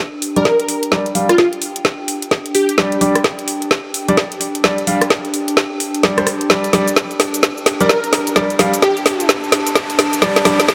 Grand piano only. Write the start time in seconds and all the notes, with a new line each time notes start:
0.36 G3 D4 D5
0.92 G3 D4 D5
1.15 G3 D4 F5
2.78 G3 D4 D5
3.01 G3 D4 D5
4.08 G3 D4 D5
4.64 G3 D4 D5
4.87 G3 D4 F5
6.03 G3 D4 D5
6.18 G3 D4 C5
6.50 G3 D4 D5
6.73 G3 D4 D5
7.81 G3 D4 D5
8.36 G3 D4 D5
8.59 G3 D4 F5
10.22 G3 D4 D5
10.45 G3 D4 D5